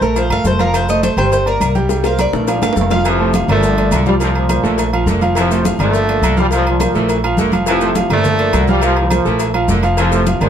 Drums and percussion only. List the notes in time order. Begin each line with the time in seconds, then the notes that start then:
0.02 high conga, maracas
0.16 cowbell, high conga, low agogo, maracas
0.30 high conga, low agogo
0.45 cowbell, high conga, low timbale, maracas
0.59 cowbell, high conga, low agogo, maracas
0.74 cowbell, high conga, low agogo, maracas
0.89 high conga, maracas
1.03 cowbell, high conga, low agogo, maracas
1.17 cowbell, high conga, low conga, low agogo, maracas
1.32 cowbell, high conga, low conga, maracas
1.47 high conga, low agogo
1.61 cowbell, high conga, low agogo, maracas
1.75 cowbell, high conga, maracas
1.89 cowbell, high bongo, high conga, low agogo, maracas
2.04 high bongo, high conga, low agogo, maracas
2.19 cowbell, high conga, low agogo, maracas
2.33 low bongo, high conga, maracas
2.48 cowbell, low bongo, high conga, low agogo, maracas
2.62 low bongo, high conga, high timbale, low agogo, maracas
2.73 cowbell, low bongo, high timbale
2.77 high conga, maracas
2.81 low timbale
2.90 cowbell, low bongo, high conga, low timbale, low agogo, maracas
3.05 cowbell, high conga, low agogo, maracas
3.20 high conga
3.34 cowbell, high conga, low agogo, maracas
3.49 cowbell, high conga, low conga, low agogo, maracas
3.63 cowbell, maracas
3.77 high conga, low agogo
3.91 cowbell, high conga, low timbale, low agogo, maracas
4.06 cowbell, high conga, maracas
4.20 cowbell, low agogo, maracas
4.35 high conga, low agogo
4.49 cowbell, high conga, low agogo, maracas
4.65 high conga, maracas
4.78 cowbell, high conga, low agogo, maracas
4.93 high conga, low agogo
5.07 cowbell, high conga, maracas
5.21 cowbell, high conga, low agogo, maracas
5.35 cowbell, high conga, low agogo, maracas
5.51 high conga, maracas
5.65 cowbell, high conga, low agogo, maracas
5.79 cowbell, high conga, low conga, low agogo, maracas
5.93 cowbell, high conga, maracas
6.09 high conga, low agogo
6.23 cowbell, high conga, low agogo, maracas
6.37 cowbell, high conga, maracas
6.51 cowbell, high conga, low agogo, maracas
6.66 high conga, low agogo
6.80 cowbell, high conga, low agogo, maracas
6.95 high conga, maracas
7.09 cowbell, high conga, low agogo, maracas
7.23 high conga, low agogo
7.37 cowbell, high conga, maracas
7.52 cowbell, high conga, low agogo, maracas
7.66 cowbell, high conga, low agogo, maracas
7.81 high conga, maracas
7.95 cowbell, high conga, low agogo, maracas
8.10 cowbell, high conga, low conga, low agogo, maracas
8.24 cowbell, high conga, low conga, maracas
8.39 high conga, low agogo
8.53 cowbell, high conga, low timbale, low agogo, maracas
8.68 cowbell, high conga, maracas
8.81 cowbell, low agogo, maracas
8.96 high conga, low agogo
9.11 cowbell, high conga, low agogo, maracas
9.25 maracas
9.39 cowbell, high conga, low agogo, maracas
9.54 high conga, low agogo
9.68 cowbell, high conga, low timbale, maracas
9.83 cowbell, low agogo, maracas
9.97 cowbell, high conga, low agogo, maracas
10.12 high conga, maracas
10.26 cowbell, high conga, low agogo, maracas
10.41 cowbell, high conga, low conga, low agogo, maracas